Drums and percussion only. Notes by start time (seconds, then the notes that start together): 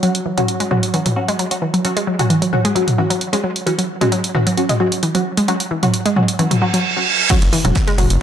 0.03 closed hi-hat
0.15 closed hi-hat
0.38 closed hi-hat, mid tom
0.48 closed hi-hat
0.60 closed hi-hat
0.71 mid tom
0.83 closed hi-hat
0.94 closed hi-hat
1.06 closed hi-hat, mid tom
1.28 closed hi-hat
1.39 closed hi-hat
1.51 closed hi-hat
1.74 closed hi-hat
1.85 closed hi-hat
1.97 closed hi-hat
2.19 closed hi-hat, mid tom
2.30 closed hi-hat
2.42 closed hi-hat
2.53 mid tom
2.65 closed hi-hat
2.76 closed hi-hat
2.88 closed hi-hat, mid tom
3.10 closed hi-hat
3.21 closed hi-hat
3.33 closed hi-hat
3.56 closed hi-hat
3.67 closed hi-hat
3.79 closed hi-hat
4.01 closed hi-hat, mid tom
4.12 closed hi-hat
4.24 closed hi-hat
4.35 mid tom
4.47 closed hi-hat
4.57 closed hi-hat
4.69 closed hi-hat, mid tom
4.92 closed hi-hat
5.03 closed hi-hat
5.15 closed hi-hat
5.37 closed hi-hat
5.48 closed hi-hat
5.60 closed hi-hat
5.83 closed hi-hat, mid tom
5.94 closed hi-hat
6.06 closed hi-hat
6.16 mid tom
6.28 closed hi-hat
6.39 closed hi-hat
6.51 closed hi-hat, mid tom
6.74 closed hi-hat
7.30 kick, closed hi-hat, crash
7.42 snare, closed hi-hat
7.53 closed hi-hat, open hi-hat, ride
7.65 closed hi-hat, mid tom
7.75 kick, snare, closed hi-hat
7.88 snare, closed hi-hat
7.98 closed hi-hat, open hi-hat, mid tom, ride
8.10 closed hi-hat